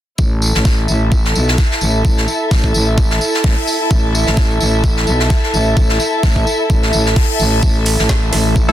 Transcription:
0.18 0.52 A1 medium
0.18 8.72 E4 medium
0.18 kick loud
0.18 tambourine medium
0.24 8.72 A4 medium
0.42 tambourine medium
0.50 8.72 E5 medium
0.54 0.87 A1 loud
0.54 snare soft
0.65 kick loud
0.65 snare loud
0.65 tambourine medium
0.88 1.33 A1 loud
0.88 tambourine medium
1.12 kick loud
1.12 tambourine medium
1.24 snare soft
1.35 1.56 B1 medium
1.35 tambourine medium
1.48 snare medium
1.58 kick loud
1.58 snare loud
1.58 tambourine medium
1.71 snare soft
1.81 2.03 A1 medium
1.81 tambourine medium
2.05 kick loud
2.05 tambourine medium
2.17 snare medium
2.28 tambourine medium
2.51 2.73 A1 medium
2.51 kick loud
2.51 snare loud
2.51 tambourine medium
2.64 kick medium
2.74 3.19 A1 medium
2.74 tambourine medium
2.98 kick loud
2.98 tambourine medium
3.10 snare soft
3.21 tambourine medium
3.34 snare soft
3.44 3.55 A1 medium
3.44 kick loud
3.44 snare loud
3.44 open hi-hat medium
3.67 tambourine medium
3.91 4.25 A1 medium
3.91 kick loud
3.91 tambourine medium
4.15 tambourine medium
4.27 4.59 A1 loud
4.27 snare medium
4.37 kick loud
4.37 snare loud
4.37 tambourine medium
4.60 5.05 A1 medium
4.60 tambourine medium
4.84 kick loud
4.84 tambourine medium
4.96 snare soft
5.07 5.29 B1 medium
5.07 tambourine medium
5.19 snare medium
5.30 kick loud
5.30 snare loud
5.30 tambourine medium
5.43 snare soft
5.54 5.75 A1 loud
5.54 tambourine medium
5.77 5.98 A1 medium
5.77 kick loud
5.77 tambourine medium
5.89 snare soft
6.00 tambourine medium
6.23 6.45 A1 medium
6.23 kick loud
6.23 snare loud
6.23 tambourine medium
6.36 kick medium
6.47 tambourine medium
6.70 6.91 A1 medium
6.70 kick loud
6.70 tambourine medium
6.82 snare soft
6.93 7.15 A1 medium
6.93 tambourine medium
7.06 snare soft
7.16 kick loud
7.16 snare loud
7.16 open hi-hat medium
7.39 7.61 A1 medium
7.39 tambourine medium
7.63 7.97 A1 medium
7.63 8.72 E3 medium
7.63 8.72 A3 medium
7.63 8.72 A4 medium
7.63 kick loud
7.63 tambourine medium
7.86 open hi-hat medium
7.86 tambourine medium
7.99 8.31 A1 medium
7.99 snare soft
8.09 kick loud
8.09 snare loud
8.09 tambourine medium
8.33 8.72 A1 medium
8.33 snare soft
8.33 open hi-hat medium
8.33 tambourine medium
8.56 kick loud
8.56 tambourine medium
8.68 8.72 A3 medium
8.68 8.72 E4 medium
8.68 8.72 A4 loud
8.68 snare soft

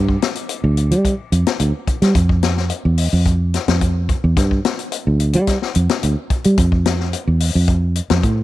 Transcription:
0.00 0.16 G2 medium
0.09 kick medium
0.22 snare medium
0.22 closed hi-hat medium
0.35 closed hi-hat medium
0.49 closed hi-hat medium
0.64 0.93 D2 medium
0.77 closed hi-hat soft
0.91 1.13 G3 medium
0.91 closed hi-hat soft
1.05 kick medium
1.05 closed hi-hat medium
1.32 1.44 F2 medium
1.32 closed hi-hat medium
1.47 snare medium
1.47 closed hi-hat soft
1.60 1.71 D2 medium
1.60 closed hi-hat medium
1.87 muted fingered electric bass stroke soft
1.87 kick medium
1.87 closed hi-hat medium
2.02 2.13 G3 medium
2.02 snare soft
2.02 closed hi-hat medium
2.15 2.71 F2 medium
2.15 kick medium
2.15 closed hi-hat medium
2.29 kick medium
2.43 snare medium
2.43 closed hi-hat soft
2.57 snare soft
2.70 closed hi-hat medium
2.85 3.07 E2 medium
2.98 open hi-hat medium
3.13 3.57 F2 medium
3.25 kick medium
3.25 closed hi-hat medium
3.54 snare soft
3.54 closed hi-hat medium
3.68 4.12 F2 medium
3.68 snare medium
3.68 closed hi-hat soft
3.81 kick medium
3.81 closed hi-hat medium
4.09 kick medium
4.09 closed hi-hat soft
4.24 4.34 E2 medium
4.37 4.59 G2 medium
4.37 kick medium
4.37 snare soft
4.37 closed hi-hat medium
4.51 kick medium
4.65 snare medium
4.65 closed hi-hat soft
4.79 closed hi-hat medium
4.92 closed hi-hat medium
5.07 5.36 D2 medium
5.20 closed hi-hat medium
5.33 5.57 G3 medium
5.33 closed hi-hat medium
5.47 kick medium
5.47 snare soft
5.47 closed hi-hat medium
5.62 snare soft
5.75 5.87 F2 medium
5.75 closed hi-hat medium
5.89 snare medium
5.89 closed hi-hat medium
6.03 6.14 D2 medium
6.03 closed hi-hat medium
6.30 muted fingered electric bass stroke soft
6.30 kick medium
6.30 closed hi-hat soft
6.44 6.56 G3 medium
6.44 closed hi-hat medium
6.58 7.13 F2 medium
6.58 kick loud
6.58 closed hi-hat medium
6.72 kick medium
6.85 snare medium
6.85 closed hi-hat medium
7.00 snare soft
7.13 closed hi-hat medium
7.27 7.50 E2 medium
7.40 open hi-hat medium
7.55 7.99 F2 medium
7.68 kick medium
7.68 closed hi-hat medium
7.95 closed hi-hat soft
8.10 8.21 F2 medium
8.10 snare medium
8.10 closed hi-hat soft
8.23 8.43 A2 medium
8.23 kick medium
8.23 closed hi-hat medium

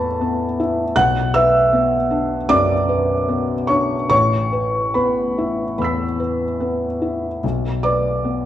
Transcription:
0.00 0.98 E2 medium
0.00 0.21 B3 soft
0.00 0.60 E4 soft
0.00 0.55 A4 medium
0.00 0.99 B4 medium
0.00 0.58 A5 medium
0.00 0.99 B5 medium
0.21 0.81 B3 medium
0.60 0.97 E4 medium
0.96 2.46 B1 medium
0.96 1.32 F#5 medium
0.96 1.34 F#6 loud
1.34 1.96 B4 medium
1.34 2.46 E5 medium
1.34 2.50 E6 medium
1.73 2.34 B3 medium
2.11 2.73 D4 medium
2.49 3.13 F#2 medium
2.49 3.66 D5 medium
2.49 3.69 D6 loud
2.89 3.53 B4 medium
3.29 3.94 B3 medium
3.67 4.10 D4 soft
3.67 4.08 C#5 medium
3.67 4.08 C#6 medium
4.10 5.75 A1 medium
4.10 4.91 C#5 medium
4.10 4.95 C#6 medium
4.53 4.94 B4 soft
4.94 5.62 B3 soft
4.94 6.18 B4 medium
4.94 5.77 B5 medium
5.38 6.04 E4 soft
5.78 6.44 E2 soft
5.78 7.38 B5 soft
5.78 7.40 E6 soft
5.84 7.42 B6 soft
6.20 6.85 B4 soft
6.60 7.27 B3 soft
7.02 7.43 E4 soft
7.44 8.46 B1 medium
7.83 8.46 B4 soft
7.83 8.46 D5 medium
7.83 8.46 D6 medium
8.24 8.46 B3 soft

